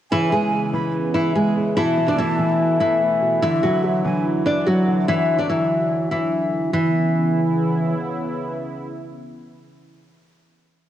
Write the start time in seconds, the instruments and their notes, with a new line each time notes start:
0.11 grand piano C#3, analog synth pad C#3 B3 E4, nylon-string guitar E3 E4, flute G#5
0.32 grand piano E3, nylon-string guitar G#3 G#4
0.53 grand piano G#3
0.73 grand piano E3, flute B5
1.14 nylon-string guitar E3 E4
1.35 grand piano G#3, nylon-string guitar G#3 G#4
1.56 grand piano C#3
1.77 analog synth pad B2 A3, grand piano B2, nylon-string guitar E3 E4, flute A5
1.97 grand piano E3
2.08 nylon-string guitar D4 D5
2.19 nylon-string guitar E3 E4, grand piano A3
2.39 grand piano E3
2.80 nylon-string guitar E3 E4
3.01 grand piano A3
3.22 grand piano B2
3.42 analog synth pad D3 F#3, grand piano D3, nylon-string guitar E3 E4, flute E5
3.63 grand piano E3, nylon-string guitar F#3 F#4
3.83 grand piano F#3
4.04 grand piano E3, flute G#5
4.46 nylon-string guitar D4 D5
4.66 grand piano F#3, nylon-string guitar F#3 F#4
4.87 grand piano D3
5.08 nylon-string guitar E3 E4
5.39 nylon-string guitar D4 D5
5.50 nylon-string guitar E3 E4
6.11 nylon-string guitar E3 E4
6.73 analog synth pad C#3 B3 E4, nylon-string guitar E3